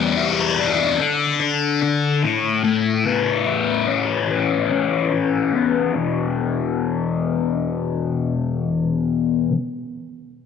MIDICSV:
0, 0, Header, 1, 2, 480
1, 0, Start_track
1, 0, Tempo, 825309
1, 1528, Time_signature, 4, 2, 24, 8
1, 6083, End_track
2, 0, Start_track
2, 0, Title_t, "Distorted electric guitar"
2, 0, Program_c, 0, 30
2, 0, Note_on_c, 0, 40, 71
2, 0, Note_on_c, 0, 55, 58
2, 97, Note_on_c, 0, 64, 73
2, 340, Note_on_c, 0, 62, 64
2, 571, Note_off_c, 0, 40, 0
2, 573, Note_off_c, 0, 55, 0
2, 573, Note_off_c, 0, 64, 0
2, 575, Note_off_c, 0, 62, 0
2, 577, Note_on_c, 0, 50, 64
2, 814, Note_on_c, 0, 62, 54
2, 1051, Note_off_c, 0, 50, 0
2, 1058, Note_on_c, 0, 50, 51
2, 1291, Note_off_c, 0, 62, 0
2, 1293, Note_off_c, 0, 50, 0
2, 1297, Note_on_c, 0, 45, 55
2, 1527, Note_off_c, 0, 45, 0
2, 1534, Note_on_c, 0, 45, 70
2, 1775, Note_on_c, 0, 59, 56
2, 2013, Note_on_c, 0, 64, 66
2, 2254, Note_on_c, 0, 61, 62
2, 2496, Note_on_c, 0, 52, 64
2, 2726, Note_off_c, 0, 61, 0
2, 2730, Note_off_c, 0, 45, 0
2, 2733, Note_on_c, 0, 61, 49
2, 2968, Note_off_c, 0, 52, 0
2, 2971, Note_off_c, 0, 59, 0
2, 2975, Note_on_c, 0, 52, 52
2, 3210, Note_off_c, 0, 64, 0
2, 3213, Note_on_c, 0, 59, 53
2, 3445, Note_on_c, 0, 40, 76
2, 3450, Note_off_c, 0, 59, 0
2, 3450, Note_off_c, 0, 61, 0
2, 3451, Note_off_c, 0, 52, 0
2, 3460, Note_on_c, 0, 47, 85
2, 3470, Note_on_c, 0, 52, 82
2, 5513, Note_off_c, 0, 40, 0
2, 5528, Note_off_c, 0, 47, 0
2, 5537, Note_off_c, 0, 52, 0
2, 6083, End_track
0, 0, End_of_file